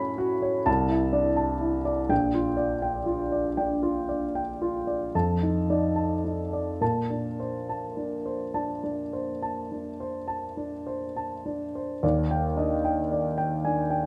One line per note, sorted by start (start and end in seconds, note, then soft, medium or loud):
0.00 0.64 A2 medium
0.00 0.69 C#4 soft
0.00 0.18 F#4 soft
0.00 0.42 C#5 soft
0.00 0.70 B5 soft
0.18 0.57 F#4 soft
0.42 0.67 C#5 soft
0.66 2.06 C2 soft
0.66 1.05 A5 medium
0.89 1.28 E4 soft
1.13 1.90 D4 soft
1.13 1.52 D5 soft
1.36 1.76 A5 soft
1.61 2.00 E4 soft
1.85 2.10 D5 soft
2.09 5.09 A#1 soft
2.09 2.48 G5 medium
2.34 2.73 F4 soft
2.57 2.96 D5 soft
2.82 3.22 G5 soft
3.06 3.46 F4 soft
3.32 3.72 D5 soft
3.57 4.39 D4 soft
3.57 3.98 G5 soft
3.83 4.24 F4 soft
4.09 4.50 D5 soft
4.35 4.77 G5 soft
4.62 5.04 F4 soft
4.87 5.14 D5 soft
5.15 6.77 F2 soft
5.15 5.58 A5 soft
5.43 5.68 D#4 soft
5.70 6.23 D#4 soft
5.70 6.13 D5 soft
5.96 6.41 A5 soft
6.25 6.70 D#4 soft
6.53 6.81 D5 soft
6.81 11.99 A#2 soft
6.81 7.28 A5 soft
7.10 7.56 D4 soft
7.40 7.85 C5 soft
7.69 8.15 A5 soft
7.97 8.43 D4 soft
8.26 8.71 C5 soft
8.54 8.82 D4 soft
8.54 9.00 A5 soft
8.84 9.30 D4 soft
9.13 9.59 C5 soft
9.43 9.88 A5 soft
9.72 10.17 D4 soft
10.00 10.45 C5 soft
10.28 10.73 A5 soft
10.57 11.03 D4 soft
10.87 11.34 C5 soft
11.17 11.64 A5 soft
11.46 11.92 D4 soft
11.75 12.03 C5 soft
12.03 14.06 D#2 soft
12.03 12.46 D5 soft
12.31 12.73 G5 soft
12.57 13.00 D4 soft
12.57 13.00 D#5 soft
12.85 13.27 G5 soft
13.12 13.54 D5 soft
13.38 13.80 G5 soft
13.65 14.06 D4 soft
13.65 13.91 G#5 soft
13.90 14.06 G5 soft